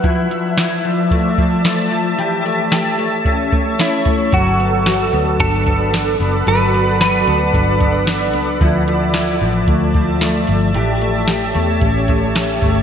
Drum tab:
HH |xxxxxxxx|xxxxxxxx|xxxxxxxx|xxxxxxxx|
SD |--o---o-|--o---o-|--o---o-|--o---o-|
BD |o---oo--|----oo-o|o---oo--|----oo--|

HH |xxxxxxxx|xxxxxxxx|
SD |--o---o-|--o---o-|
BD |o---oo--|----oo-o|